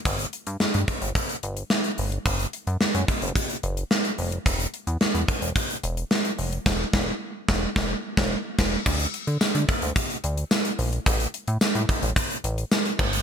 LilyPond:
<<
  \new Staff \with { instrumentName = "Analog synth bass" } { \clef bass \time 4/4 \key e \dorian \tempo 4 = 109 g,,8 r16 g,16 g,16 g,16 r16 g,,16 r8 g,,8 r8 g,,8 | fis,,8 r16 fis,16 fis,16 fis,16 r16 fis,,16 r8 fis,,8 r8 f,,8 | e,,8 r16 e,16 e,16 e,16 r16 e,,16 r8 e,,8 r8 f,,8 | e,,8 e,,8 r8 e,,8 e,,8 r16 e,,8 r16 e,,8 |
d,8 r16 d16 d16 d16 r16 d,16 r8 d,8 r8 bes,,8 | a,,8 r16 a,16 a,16 a,16 r16 a,,16 r8 a,,8 r8 g,,8 | }
  \new DrumStaff \with { instrumentName = "Drums" } \drummode { \time 4/4 <hh bd>16 hh16 hh16 hh16 sn16 hh16 <hh bd>16 hh16 <hh bd>16 hh16 hh16 hh16 sn16 hh16 hho16 hh16 | <hh bd>16 hh16 hh16 hh16 sn16 hh16 <hh bd>16 hh16 <hh bd>16 hh16 hh16 hh16 sn16 hh16 hho16 hh16 | <hh bd>16 hh16 hh16 hh16 sn16 hh16 <hh bd>16 hh16 <hh bd>16 hh16 hh16 hh16 sn16 hh16 hho16 hh16 | <cymc bd sn>8 <bd sn>8 r8 <bd sn>8 <bd sn>8. <bd sn>16 r8 <cymc bd sn>8 |
<cymc bd>16 hh16 hh16 hh16 <sn tamb>16 hh16 <hh bd>16 hh16 <hh bd>16 hh16 hh16 hh16 <sn tamb>16 hh16 hho16 hh16 | <hh bd>16 hh16 hh16 hh16 <sn tamb>16 hh16 <hh bd>16 hh16 <hh bd>16 hh16 hh16 hh16 <sn tamb>16 hh16 <cymc bd>16 hh16 | }
>>